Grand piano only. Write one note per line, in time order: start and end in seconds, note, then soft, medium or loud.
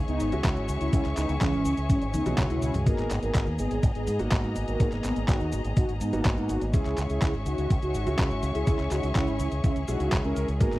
0.00 0.29 G#3 medium
0.00 0.29 C#4 medium
0.00 0.29 E4 medium
0.00 0.29 G#4 loud
0.32 0.90 G#3 loud
0.32 0.90 C#4 medium
0.32 0.90 E4 medium
0.32 0.90 F#4 loud
0.93 2.23 G#3 medium
0.93 2.23 C#4 medium
0.93 2.23 E4 medium
0.93 2.23 G#4 loud
2.26 2.84 G#3 loud
2.26 2.84 C#4 medium
2.26 2.83 E4 medium
2.26 2.84 F#4 loud
2.86 4.17 A#3 medium
2.86 4.17 B3 medium
2.86 4.17 D#4 medium
2.86 4.17 G#4 loud
4.19 4.77 A#3 loud
4.19 4.77 B3 medium
4.19 4.77 D#4 medium
4.19 4.77 F#4 loud
4.80 6.10 A#3 medium
4.80 6.10 B3 medium
4.80 6.10 D#4 medium
4.80 6.10 G#4 medium
6.13 6.71 A#3 loud
6.13 6.71 B3 medium
6.13 6.71 D#4 medium
6.13 6.71 F#4 loud
6.73 8.04 G#3 medium
6.73 8.04 C#4 medium
6.73 8.04 E4 medium
6.73 8.04 G#4 loud
8.07 8.64 G#3 medium
8.07 8.64 C#4 medium
8.07 8.64 E4 medium
8.07 8.64 F#4 loud
8.67 9.86 G#3 medium
8.67 9.86 C#4 medium
8.67 9.86 E4 medium
8.67 9.86 G#4 loud
9.88 10.21 G#3 medium
9.88 10.21 C#4 medium
9.88 10.21 E4 medium
9.88 10.21 G#4 loud
10.24 10.58 G#3 medium
10.24 10.58 C#4 medium
10.24 10.58 E4 medium
10.24 10.58 G#4 medium
10.60 10.79 A#3 medium
10.60 10.79 B3 medium
10.60 10.79 D#4 medium
10.60 10.79 G#4 loud